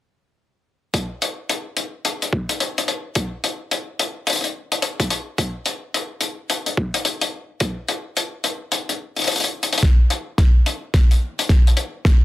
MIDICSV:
0, 0, Header, 1, 2, 480
1, 0, Start_track
1, 0, Tempo, 555556
1, 813, Time_signature, 4, 2, 24, 8
1, 10581, End_track
2, 0, Start_track
2, 0, Title_t, "Drums"
2, 810, Note_on_c, 9, 36, 105
2, 810, Note_on_c, 9, 42, 80
2, 897, Note_off_c, 9, 36, 0
2, 897, Note_off_c, 9, 42, 0
2, 1054, Note_on_c, 9, 42, 79
2, 1140, Note_off_c, 9, 42, 0
2, 1292, Note_on_c, 9, 42, 83
2, 1378, Note_off_c, 9, 42, 0
2, 1526, Note_on_c, 9, 42, 66
2, 1612, Note_off_c, 9, 42, 0
2, 1770, Note_on_c, 9, 42, 77
2, 1856, Note_off_c, 9, 42, 0
2, 1920, Note_on_c, 9, 42, 51
2, 2006, Note_off_c, 9, 42, 0
2, 2010, Note_on_c, 9, 36, 97
2, 2096, Note_off_c, 9, 36, 0
2, 2154, Note_on_c, 9, 42, 68
2, 2240, Note_off_c, 9, 42, 0
2, 2250, Note_on_c, 9, 42, 78
2, 2336, Note_off_c, 9, 42, 0
2, 2402, Note_on_c, 9, 42, 80
2, 2489, Note_off_c, 9, 42, 0
2, 2489, Note_on_c, 9, 42, 73
2, 2575, Note_off_c, 9, 42, 0
2, 2724, Note_on_c, 9, 42, 87
2, 2729, Note_on_c, 9, 36, 112
2, 2811, Note_off_c, 9, 42, 0
2, 2815, Note_off_c, 9, 36, 0
2, 2970, Note_on_c, 9, 42, 71
2, 3057, Note_off_c, 9, 42, 0
2, 3209, Note_on_c, 9, 42, 76
2, 3295, Note_off_c, 9, 42, 0
2, 3451, Note_on_c, 9, 42, 83
2, 3538, Note_off_c, 9, 42, 0
2, 3688, Note_on_c, 9, 42, 84
2, 3714, Note_off_c, 9, 42, 0
2, 3714, Note_on_c, 9, 42, 71
2, 3738, Note_off_c, 9, 42, 0
2, 3738, Note_on_c, 9, 42, 60
2, 3761, Note_off_c, 9, 42, 0
2, 3761, Note_on_c, 9, 42, 49
2, 3765, Note_off_c, 9, 42, 0
2, 3765, Note_on_c, 9, 42, 42
2, 3809, Note_off_c, 9, 42, 0
2, 3809, Note_on_c, 9, 42, 33
2, 3836, Note_off_c, 9, 42, 0
2, 3836, Note_on_c, 9, 42, 52
2, 3923, Note_off_c, 9, 42, 0
2, 4076, Note_on_c, 9, 42, 74
2, 4163, Note_off_c, 9, 42, 0
2, 4168, Note_on_c, 9, 42, 90
2, 4254, Note_off_c, 9, 42, 0
2, 4317, Note_on_c, 9, 36, 104
2, 4318, Note_on_c, 9, 42, 70
2, 4404, Note_off_c, 9, 36, 0
2, 4405, Note_off_c, 9, 42, 0
2, 4410, Note_on_c, 9, 42, 76
2, 4497, Note_off_c, 9, 42, 0
2, 4651, Note_on_c, 9, 36, 116
2, 4652, Note_on_c, 9, 42, 84
2, 4737, Note_off_c, 9, 36, 0
2, 4738, Note_off_c, 9, 42, 0
2, 4887, Note_on_c, 9, 42, 73
2, 4973, Note_off_c, 9, 42, 0
2, 5135, Note_on_c, 9, 42, 75
2, 5221, Note_off_c, 9, 42, 0
2, 5362, Note_on_c, 9, 42, 67
2, 5449, Note_off_c, 9, 42, 0
2, 5613, Note_on_c, 9, 42, 84
2, 5700, Note_off_c, 9, 42, 0
2, 5757, Note_on_c, 9, 42, 49
2, 5843, Note_off_c, 9, 42, 0
2, 5853, Note_on_c, 9, 36, 105
2, 5939, Note_off_c, 9, 36, 0
2, 5997, Note_on_c, 9, 42, 73
2, 6084, Note_off_c, 9, 42, 0
2, 6091, Note_on_c, 9, 42, 82
2, 6177, Note_off_c, 9, 42, 0
2, 6233, Note_on_c, 9, 42, 78
2, 6320, Note_off_c, 9, 42, 0
2, 6569, Note_on_c, 9, 42, 76
2, 6572, Note_on_c, 9, 36, 115
2, 6655, Note_off_c, 9, 42, 0
2, 6659, Note_off_c, 9, 36, 0
2, 6813, Note_on_c, 9, 42, 71
2, 6899, Note_off_c, 9, 42, 0
2, 7056, Note_on_c, 9, 42, 82
2, 7143, Note_off_c, 9, 42, 0
2, 7291, Note_on_c, 9, 42, 76
2, 7378, Note_off_c, 9, 42, 0
2, 7532, Note_on_c, 9, 42, 78
2, 7618, Note_off_c, 9, 42, 0
2, 7683, Note_on_c, 9, 42, 49
2, 7769, Note_off_c, 9, 42, 0
2, 7918, Note_on_c, 9, 42, 30
2, 7940, Note_off_c, 9, 42, 0
2, 7940, Note_on_c, 9, 42, 36
2, 7963, Note_off_c, 9, 42, 0
2, 7963, Note_on_c, 9, 42, 41
2, 7985, Note_off_c, 9, 42, 0
2, 7985, Note_on_c, 9, 42, 44
2, 8010, Note_off_c, 9, 42, 0
2, 8010, Note_on_c, 9, 42, 48
2, 8015, Note_off_c, 9, 42, 0
2, 8015, Note_on_c, 9, 42, 85
2, 8048, Note_off_c, 9, 42, 0
2, 8048, Note_on_c, 9, 42, 51
2, 8085, Note_off_c, 9, 42, 0
2, 8085, Note_on_c, 9, 42, 56
2, 8123, Note_off_c, 9, 42, 0
2, 8123, Note_on_c, 9, 42, 60
2, 8155, Note_off_c, 9, 42, 0
2, 8155, Note_on_c, 9, 42, 67
2, 8241, Note_off_c, 9, 42, 0
2, 8320, Note_on_c, 9, 42, 65
2, 8403, Note_off_c, 9, 42, 0
2, 8403, Note_on_c, 9, 42, 71
2, 8447, Note_off_c, 9, 42, 0
2, 8447, Note_on_c, 9, 42, 89
2, 8490, Note_on_c, 9, 36, 95
2, 8494, Note_off_c, 9, 42, 0
2, 8494, Note_on_c, 9, 42, 95
2, 8496, Note_on_c, 9, 38, 45
2, 8576, Note_off_c, 9, 36, 0
2, 8580, Note_off_c, 9, 42, 0
2, 8583, Note_off_c, 9, 38, 0
2, 8729, Note_on_c, 9, 42, 82
2, 8815, Note_off_c, 9, 42, 0
2, 8968, Note_on_c, 9, 38, 48
2, 8970, Note_on_c, 9, 36, 93
2, 8975, Note_on_c, 9, 42, 84
2, 9055, Note_off_c, 9, 38, 0
2, 9057, Note_off_c, 9, 36, 0
2, 9061, Note_off_c, 9, 42, 0
2, 9212, Note_on_c, 9, 42, 72
2, 9298, Note_off_c, 9, 42, 0
2, 9451, Note_on_c, 9, 36, 96
2, 9451, Note_on_c, 9, 38, 54
2, 9452, Note_on_c, 9, 42, 81
2, 9537, Note_off_c, 9, 36, 0
2, 9538, Note_off_c, 9, 38, 0
2, 9539, Note_off_c, 9, 42, 0
2, 9599, Note_on_c, 9, 42, 51
2, 9686, Note_off_c, 9, 42, 0
2, 9841, Note_on_c, 9, 42, 79
2, 9928, Note_off_c, 9, 42, 0
2, 9930, Note_on_c, 9, 38, 56
2, 9931, Note_on_c, 9, 36, 97
2, 9934, Note_on_c, 9, 42, 88
2, 10016, Note_off_c, 9, 38, 0
2, 10018, Note_off_c, 9, 36, 0
2, 10020, Note_off_c, 9, 42, 0
2, 10085, Note_on_c, 9, 42, 72
2, 10167, Note_off_c, 9, 42, 0
2, 10167, Note_on_c, 9, 42, 78
2, 10254, Note_off_c, 9, 42, 0
2, 10411, Note_on_c, 9, 36, 96
2, 10411, Note_on_c, 9, 38, 64
2, 10418, Note_on_c, 9, 42, 88
2, 10497, Note_off_c, 9, 38, 0
2, 10498, Note_off_c, 9, 36, 0
2, 10505, Note_off_c, 9, 42, 0
2, 10581, End_track
0, 0, End_of_file